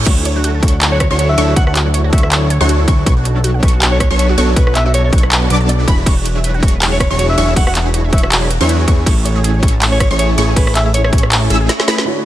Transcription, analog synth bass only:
0, 0, Header, 1, 2, 480
1, 0, Start_track
1, 0, Key_signature, 3, "major"
1, 0, Tempo, 375000
1, 83, Time_signature, 4, 2, 24, 8
1, 15680, End_track
2, 0, Start_track
2, 0, Title_t, "Analog synth bass"
2, 0, Program_c, 0, 38
2, 81, Note_on_c, 0, 38, 96
2, 780, Note_off_c, 0, 38, 0
2, 801, Note_on_c, 0, 38, 97
2, 1388, Note_off_c, 0, 38, 0
2, 1416, Note_on_c, 0, 38, 95
2, 1742, Note_off_c, 0, 38, 0
2, 1763, Note_on_c, 0, 38, 100
2, 1982, Note_off_c, 0, 38, 0
2, 2001, Note_on_c, 0, 38, 92
2, 2701, Note_off_c, 0, 38, 0
2, 2722, Note_on_c, 0, 38, 98
2, 3309, Note_off_c, 0, 38, 0
2, 3335, Note_on_c, 0, 38, 97
2, 3661, Note_off_c, 0, 38, 0
2, 3681, Note_on_c, 0, 38, 100
2, 3901, Note_off_c, 0, 38, 0
2, 3921, Note_on_c, 0, 35, 98
2, 4621, Note_off_c, 0, 35, 0
2, 4642, Note_on_c, 0, 35, 98
2, 5229, Note_off_c, 0, 35, 0
2, 5256, Note_on_c, 0, 35, 98
2, 5581, Note_off_c, 0, 35, 0
2, 5600, Note_on_c, 0, 35, 97
2, 5820, Note_off_c, 0, 35, 0
2, 6561, Note_on_c, 0, 35, 97
2, 7021, Note_off_c, 0, 35, 0
2, 7040, Note_on_c, 0, 35, 96
2, 7500, Note_off_c, 0, 35, 0
2, 7520, Note_on_c, 0, 28, 96
2, 7740, Note_off_c, 0, 28, 0
2, 7760, Note_on_c, 0, 28, 95
2, 8460, Note_off_c, 0, 28, 0
2, 8480, Note_on_c, 0, 28, 98
2, 9068, Note_off_c, 0, 28, 0
2, 9096, Note_on_c, 0, 28, 97
2, 9421, Note_off_c, 0, 28, 0
2, 9442, Note_on_c, 0, 28, 101
2, 9661, Note_off_c, 0, 28, 0
2, 9681, Note_on_c, 0, 28, 92
2, 10381, Note_off_c, 0, 28, 0
2, 10400, Note_on_c, 0, 28, 96
2, 10988, Note_off_c, 0, 28, 0
2, 11016, Note_on_c, 0, 40, 98
2, 11342, Note_off_c, 0, 40, 0
2, 11362, Note_on_c, 0, 40, 99
2, 11581, Note_off_c, 0, 40, 0
2, 11602, Note_on_c, 0, 33, 97
2, 12301, Note_off_c, 0, 33, 0
2, 12935, Note_on_c, 0, 33, 99
2, 13261, Note_off_c, 0, 33, 0
2, 13282, Note_on_c, 0, 33, 96
2, 13501, Note_off_c, 0, 33, 0
2, 13521, Note_on_c, 0, 33, 98
2, 14221, Note_off_c, 0, 33, 0
2, 14241, Note_on_c, 0, 33, 101
2, 14701, Note_off_c, 0, 33, 0
2, 14723, Note_on_c, 0, 33, 99
2, 14963, Note_off_c, 0, 33, 0
2, 15680, End_track
0, 0, End_of_file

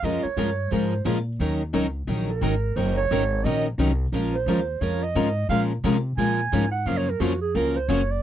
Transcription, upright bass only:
0, 0, Header, 1, 3, 480
1, 0, Start_track
1, 0, Key_signature, -5, "minor"
1, 0, Tempo, 341686
1, 53, Time_signature, 4, 2, 24, 8
1, 11554, End_track
2, 0, Start_track
2, 0, Title_t, "Upright bass"
2, 0, Program_c, 0, 32
2, 36, Note_on_c, 0, 41, 80
2, 321, Note_off_c, 0, 41, 0
2, 515, Note_on_c, 0, 43, 84
2, 989, Note_off_c, 0, 43, 0
2, 1009, Note_on_c, 0, 44, 82
2, 1468, Note_off_c, 0, 44, 0
2, 1477, Note_on_c, 0, 46, 89
2, 1949, Note_off_c, 0, 46, 0
2, 1959, Note_on_c, 0, 39, 81
2, 2430, Note_off_c, 0, 39, 0
2, 2440, Note_on_c, 0, 37, 86
2, 2907, Note_off_c, 0, 37, 0
2, 2915, Note_on_c, 0, 34, 86
2, 3383, Note_off_c, 0, 34, 0
2, 3391, Note_on_c, 0, 32, 88
2, 3866, Note_off_c, 0, 32, 0
2, 3876, Note_on_c, 0, 30, 82
2, 4349, Note_off_c, 0, 30, 0
2, 4366, Note_on_c, 0, 32, 91
2, 4822, Note_off_c, 0, 32, 0
2, 4830, Note_on_c, 0, 34, 87
2, 5305, Note_off_c, 0, 34, 0
2, 5311, Note_on_c, 0, 36, 89
2, 5783, Note_off_c, 0, 36, 0
2, 5791, Note_on_c, 0, 34, 80
2, 6260, Note_off_c, 0, 34, 0
2, 6269, Note_on_c, 0, 39, 86
2, 6745, Note_off_c, 0, 39, 0
2, 6757, Note_on_c, 0, 41, 83
2, 7229, Note_off_c, 0, 41, 0
2, 7238, Note_on_c, 0, 44, 94
2, 7698, Note_off_c, 0, 44, 0
2, 7707, Note_on_c, 0, 46, 83
2, 8184, Note_off_c, 0, 46, 0
2, 8201, Note_on_c, 0, 48, 92
2, 8661, Note_off_c, 0, 48, 0
2, 8670, Note_on_c, 0, 46, 83
2, 9147, Note_off_c, 0, 46, 0
2, 9169, Note_on_c, 0, 44, 89
2, 9625, Note_off_c, 0, 44, 0
2, 9633, Note_on_c, 0, 42, 79
2, 10109, Note_off_c, 0, 42, 0
2, 10115, Note_on_c, 0, 41, 82
2, 10590, Note_off_c, 0, 41, 0
2, 10601, Note_on_c, 0, 37, 78
2, 11068, Note_off_c, 0, 37, 0
2, 11077, Note_on_c, 0, 30, 91
2, 11551, Note_off_c, 0, 30, 0
2, 11554, End_track
3, 0, Start_track
3, 0, Title_t, "Muted upright bass strokes"
3, 340, Note_on_c, 9, 29, 42
3, 480, Note_off_c, 9, 29, 0
3, 11554, End_track
0, 0, End_of_file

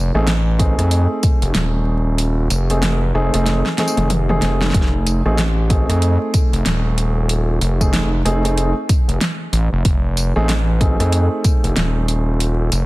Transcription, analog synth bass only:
0, 0, Header, 1, 2, 480
1, 0, Start_track
1, 0, Tempo, 638298
1, 1645, Time_signature, 4, 2, 24, 8
1, 9670, End_track
2, 0, Start_track
2, 0, Title_t, "Analog synth bass"
2, 0, Program_c, 0, 38
2, 0, Note_on_c, 0, 29, 96
2, 89, Note_off_c, 0, 29, 0
2, 109, Note_on_c, 0, 33, 97
2, 567, Note_off_c, 0, 33, 0
2, 589, Note_on_c, 0, 41, 94
2, 807, Note_off_c, 0, 41, 0
2, 1069, Note_on_c, 0, 29, 98
2, 1149, Note_off_c, 0, 29, 0
2, 1163, Note_on_c, 0, 27, 100
2, 1869, Note_off_c, 0, 27, 0
2, 1883, Note_on_c, 0, 29, 98
2, 2349, Note_off_c, 0, 29, 0
2, 2364, Note_on_c, 0, 29, 96
2, 2487, Note_off_c, 0, 29, 0
2, 2511, Note_on_c, 0, 29, 95
2, 2728, Note_off_c, 0, 29, 0
2, 2990, Note_on_c, 0, 29, 94
2, 3310, Note_off_c, 0, 29, 0
2, 3324, Note_on_c, 0, 29, 99
2, 3550, Note_off_c, 0, 29, 0
2, 3566, Note_on_c, 0, 29, 97
2, 3928, Note_off_c, 0, 29, 0
2, 3950, Note_on_c, 0, 33, 97
2, 4407, Note_off_c, 0, 33, 0
2, 4429, Note_on_c, 0, 41, 97
2, 4647, Note_off_c, 0, 41, 0
2, 4910, Note_on_c, 0, 29, 93
2, 4990, Note_off_c, 0, 29, 0
2, 5005, Note_on_c, 0, 27, 94
2, 5710, Note_off_c, 0, 27, 0
2, 5724, Note_on_c, 0, 29, 95
2, 6190, Note_off_c, 0, 29, 0
2, 6205, Note_on_c, 0, 29, 95
2, 6567, Note_off_c, 0, 29, 0
2, 6830, Note_on_c, 0, 29, 95
2, 6910, Note_off_c, 0, 29, 0
2, 7165, Note_on_c, 0, 33, 99
2, 7288, Note_off_c, 0, 33, 0
2, 7314, Note_on_c, 0, 29, 100
2, 7392, Note_off_c, 0, 29, 0
2, 7407, Note_on_c, 0, 29, 93
2, 7769, Note_off_c, 0, 29, 0
2, 7792, Note_on_c, 0, 33, 101
2, 8248, Note_off_c, 0, 33, 0
2, 8272, Note_on_c, 0, 41, 99
2, 8488, Note_off_c, 0, 41, 0
2, 8752, Note_on_c, 0, 29, 101
2, 8831, Note_off_c, 0, 29, 0
2, 8846, Note_on_c, 0, 27, 98
2, 9551, Note_off_c, 0, 27, 0
2, 9566, Note_on_c, 0, 29, 100
2, 9670, Note_off_c, 0, 29, 0
2, 9670, End_track
0, 0, End_of_file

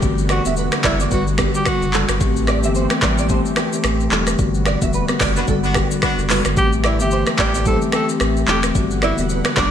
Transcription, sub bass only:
0, 0, Header, 1, 2, 480
1, 0, Start_track
1, 0, Tempo, 545455
1, 21, Time_signature, 4, 2, 24, 8
1, 8544, End_track
2, 0, Start_track
2, 0, Title_t, "Sub bass"
2, 0, Program_c, 0, 38
2, 22, Note_on_c, 0, 31, 110
2, 355, Note_off_c, 0, 31, 0
2, 403, Note_on_c, 0, 28, 90
2, 613, Note_off_c, 0, 28, 0
2, 739, Note_on_c, 0, 30, 96
2, 951, Note_off_c, 0, 30, 0
2, 982, Note_on_c, 0, 31, 110
2, 1315, Note_off_c, 0, 31, 0
2, 1600, Note_on_c, 0, 30, 91
2, 1811, Note_off_c, 0, 30, 0
2, 1840, Note_on_c, 0, 31, 95
2, 1929, Note_off_c, 0, 31, 0
2, 1942, Note_on_c, 0, 33, 108
2, 2322, Note_on_c, 0, 31, 94
2, 2335, Note_off_c, 0, 33, 0
2, 2532, Note_off_c, 0, 31, 0
2, 2660, Note_on_c, 0, 33, 97
2, 2994, Note_off_c, 0, 33, 0
2, 3382, Note_on_c, 0, 33, 91
2, 3593, Note_off_c, 0, 33, 0
2, 3621, Note_on_c, 0, 28, 98
2, 3832, Note_off_c, 0, 28, 0
2, 3861, Note_on_c, 0, 31, 108
2, 4195, Note_off_c, 0, 31, 0
2, 4240, Note_on_c, 0, 28, 91
2, 4452, Note_off_c, 0, 28, 0
2, 4580, Note_on_c, 0, 30, 94
2, 4792, Note_off_c, 0, 30, 0
2, 4822, Note_on_c, 0, 31, 115
2, 5155, Note_off_c, 0, 31, 0
2, 5440, Note_on_c, 0, 30, 95
2, 5651, Note_off_c, 0, 30, 0
2, 5683, Note_on_c, 0, 31, 94
2, 5771, Note_off_c, 0, 31, 0
2, 5782, Note_on_c, 0, 33, 114
2, 6162, Note_on_c, 0, 31, 91
2, 6175, Note_off_c, 0, 33, 0
2, 6372, Note_off_c, 0, 31, 0
2, 6499, Note_on_c, 0, 33, 95
2, 6834, Note_off_c, 0, 33, 0
2, 7223, Note_on_c, 0, 33, 93
2, 7433, Note_off_c, 0, 33, 0
2, 7463, Note_on_c, 0, 28, 100
2, 7673, Note_off_c, 0, 28, 0
2, 7701, Note_on_c, 0, 31, 111
2, 8035, Note_off_c, 0, 31, 0
2, 8082, Note_on_c, 0, 28, 92
2, 8293, Note_off_c, 0, 28, 0
2, 8419, Note_on_c, 0, 30, 95
2, 8544, Note_off_c, 0, 30, 0
2, 8544, End_track
0, 0, End_of_file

